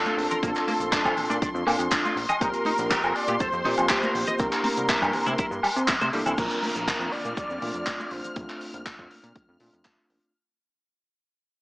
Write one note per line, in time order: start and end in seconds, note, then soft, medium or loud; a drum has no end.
0.00 0.40 C4 medium
0.00 0.40 D4 medium
0.00 0.40 F4 loud
0.00 0.39 A4 loud
0.00 6.38 C6 medium
0.05 0.15 F4 medium
0.05 high conga medium
0.05 cabasa soft
0.17 0.27 A#1 medium
0.17 open hi-hat loud
0.31 0.37 A#4 medium
0.31 closed hi-hat medium
0.31 low conga loud
0.31 cabasa medium
0.42 0.53 A#1 loud
0.42 0.49 A#3 medium
0.42 1.64 C4 medium
0.42 1.64 D4 medium
0.42 1.64 F4 medium
0.42 1.38 A4 loud
0.42 kick loud
0.42 closed hi-hat medium
0.42 cabasa medium
0.55 clap soft
0.55 closed hi-hat medium
0.55 cabasa soft
0.68 0.71 A#3 loud
0.68 open hi-hat loud
0.68 high conga loud
0.80 0.99 A#1 medium
0.80 closed hi-hat medium
0.80 cabasa medium
0.92 1.02 D4 loud
0.92 kick loud
0.92 clap loud
0.92 closed hi-hat medium
0.92 cabasa medium
1.05 1.14 F2 loud
1.05 1.14 F4 medium
1.05 kick medium
1.05 cabasa soft
1.05 high woodblock medium
1.17 1.27 A#2 soft
1.17 open hi-hat medium
1.17 low conga loud
1.30 1.39 A#2 medium
1.30 1.36 D4 loud
1.30 closed hi-hat medium
1.30 high conga medium
1.30 cabasa medium
1.42 1.48 D4 medium
1.42 kick loud
1.42 closed hi-hat medium
1.42 cabasa medium
1.55 1.64 F2 loud
1.55 cabasa soft
1.66 1.76 A#2 loud
1.66 1.71 A#3 loud
1.66 2.15 C4 medium
1.66 2.15 D4 medium
1.66 2.15 F4 loud
1.66 2.15 A4 loud
1.66 open hi-hat loud
1.66 high woodblock medium
1.79 1.88 F2 medium
1.79 closed hi-hat medium
1.79 cabasa medium
1.91 2.01 D4 loud
1.91 kick loud
1.91 clap loud
1.91 closed hi-hat medium
1.91 cabasa medium
2.05 2.13 F4 medium
2.05 high conga medium
2.05 cabasa soft
2.16 2.26 A#1 medium
2.16 open hi-hat loud
2.29 2.35 D#5 medium
2.29 closed hi-hat medium
2.29 low conga medium
2.29 cabasa medium
2.29 high woodblock medium
2.40 2.51 A#1 loud
2.40 3.62 A#3 medium
2.40 3.62 C4 medium
2.40 2.48 D#4 medium
2.40 3.62 F4 medium
2.40 3.63 G4 medium
2.40 3.17 A#4 loud
2.40 kick loud
2.40 closed hi-hat medium
2.40 cabasa medium
2.53 closed hi-hat medium
2.53 cabasa soft
2.65 2.70 D#4 loud
2.65 open hi-hat loud
2.65 high conga medium
2.78 2.97 A#1 medium
2.78 closed hi-hat medium
2.78 cabasa medium
2.90 3.00 G4 loud
2.90 kick loud
2.90 clap loud
2.90 closed hi-hat loud
2.90 cabasa medium
3.03 3.13 F2 loud
3.03 3.13 A#4 medium
3.03 cabasa soft
3.03 high woodblock medium
3.15 3.40 D5 loud
3.15 open hi-hat loud
3.27 3.37 A#2 medium
3.27 3.34 G4 loud
3.27 closed hi-hat medium
3.27 high conga medium
3.27 cabasa medium
3.40 3.51 F2 soft
3.40 3.47 A4 medium
3.40 3.86 C5 loud
3.40 kick loud
3.40 closed hi-hat medium
3.40 cabasa medium
3.53 3.62 F2 loud
3.53 cabasa soft
3.64 3.75 A#2 loud
3.64 4.36 A#3 loud
3.64 4.37 C4 medium
3.64 3.69 D#4 loud
3.64 4.37 F4 medium
3.64 4.37 G4 loud
3.64 open hi-hat loud
3.64 low conga medium
3.78 3.87 F2 medium
3.78 closed hi-hat medium
3.78 cabasa medium
3.78 high woodblock medium
3.89 4.00 G4 loud
3.89 4.41 C5 loud
3.89 kick loud
3.89 clap loud
3.89 closed hi-hat medium
3.89 cabasa medium
4.03 4.12 A#4 medium
4.03 high conga medium
4.03 cabasa soft
4.15 4.25 A#1 medium
4.15 open hi-hat loud
4.27 4.33 D#5 medium
4.27 closed hi-hat medium
4.27 low conga loud
4.27 cabasa medium
4.38 4.49 C2 loud
4.38 5.60 A#3 medium
4.38 4.46 C4 medium
4.38 5.60 D4 medium
4.38 5.60 E4 medium
4.38 5.61 G4 loud
4.38 5.88 A#4 loud
4.38 kick loud
4.38 closed hi-hat medium
4.38 cabasa medium
4.52 clap soft
4.52 closed hi-hat medium
4.52 cabasa soft
4.64 4.68 C4 loud
4.64 open hi-hat loud
4.64 high conga loud
4.77 4.96 C2 medium
4.77 closed hi-hat medium
4.77 cabasa medium
4.88 4.99 E4 loud
4.88 kick loud
4.88 clap loud
4.88 closed hi-hat loud
4.88 cabasa medium
5.02 5.11 G2 loud
5.02 5.11 G4 medium
5.02 kick medium
5.02 cabasa soft
5.02 high woodblock medium
5.13 5.24 C3 soft
5.13 open hi-hat medium
5.13 low conga medium
5.26 5.36 C3 medium
5.26 5.32 E4 loud
5.26 closed hi-hat medium
5.26 high conga medium
5.26 cabasa medium
5.38 5.45 E4 medium
5.38 kick loud
5.38 closed hi-hat loud
5.38 cabasa medium
5.51 5.60 G2 medium
5.51 cabasa soft
5.63 5.67 G3 medium
5.63 open hi-hat loud
5.63 high woodblock medium
5.76 5.95 C3 medium
5.76 closed hi-hat medium
5.76 cabasa medium
5.88 5.92 E4 medium
5.88 kick loud
5.88 clap loud
5.88 closed hi-hat medium
5.88 cabasa medium
6.01 6.10 C3 medium
6.01 6.07 C5 medium
6.01 closed hi-hat medium
6.01 high conga medium
6.01 cabasa soft
6.13 6.24 C2 soft
6.13 6.20 G3 medium
6.13 6.35 A#3 medium
6.13 6.35 D4 medium
6.13 6.35 E4 medium
6.13 6.35 A4 loud
6.13 open hi-hat medium
6.26 6.35 C2 loud
6.26 6.32 E4 medium
6.26 closed hi-hat medium
6.26 low conga loud
6.26 cabasa medium
6.26 high woodblock medium
6.38 6.48 A#1 loud
6.38 7.59 A#3 medium
6.38 7.59 C4 medium
6.38 7.59 D4 medium
6.38 7.60 F4 medium
6.38 7.13 A#4 loud
6.38 10.36 F6 medium
6.38 kick loud
6.38 closed hi-hat medium
6.38 crash loud
6.38 downlifter medium
6.38 cabasa medium
6.50 closed hi-hat medium
6.50 cabasa soft
6.63 open hi-hat loud
6.63 high conga medium
6.76 6.94 A#1 medium
6.76 closed hi-hat medium
6.76 cabasa medium
6.88 kick loud
6.88 clap loud
6.88 closed hi-hat medium
6.88 cabasa medium
7.00 7.09 F2 medium
7.00 cabasa soft
7.12 8.13 D5 loud
7.12 open hi-hat medium
7.25 7.34 A#2 medium
7.25 closed hi-hat medium
7.25 high conga medium
7.25 cabasa medium
7.37 7.47 F2 soft
7.37 kick loud
7.37 closed hi-hat medium
7.37 cabasa medium
7.50 7.59 F2 medium
7.50 cabasa soft
7.61 7.72 A#2 medium
7.61 8.33 A3 loud
7.61 8.33 C4 medium
7.61 8.33 D4 medium
7.61 8.34 F4 loud
7.61 open hi-hat loud
7.61 low conga medium
7.74 7.84 F2 medium
7.74 closed hi-hat medium
7.74 cabasa medium
7.86 kick loud
7.86 clap loud
7.86 closed hi-hat medium
7.86 cabasa medium
8.00 high conga medium
8.00 cabasa soft
8.11 8.21 A#1 medium
8.11 8.36 C5 medium
8.11 open hi-hat medium
8.24 closed hi-hat medium
8.24 low conga medium
8.24 cabasa medium
8.36 8.46 A#1 loud
8.36 9.57 A3 medium
8.36 9.57 C4 medium
8.36 9.58 D4 medium
8.36 9.58 F4 medium
8.36 kick loud
8.36 closed hi-hat medium
8.49 clap soft
8.49 closed hi-hat soft
8.61 open hi-hat loud
8.74 8.93 A#1 medium
8.74 closed hi-hat medium
8.86 kick loud
8.86 clap loud
8.86 closed hi-hat medium
8.99 9.08 F2 medium
8.99 kick medium
9.11 9.21 A#2 soft
9.11 open hi-hat loud
9.24 9.33 A#2 medium
9.24 closed hi-hat medium
9.36 kick loud
9.36 closed hi-hat medium
9.48 9.57 F2 medium
9.59 9.70 A#2 medium
9.59 10.31 A3 medium
9.59 10.31 C4 medium
9.59 10.32 D4 medium
9.59 10.32 F4 medium
9.59 open hi-hat loud
9.73 9.82 F2 medium
9.73 closed hi-hat medium
9.85 kick loud
9.85 clap loud
9.85 closed hi-hat medium
10.10 10.20 A#1 medium
10.10 open hi-hat medium
10.23 closed hi-hat medium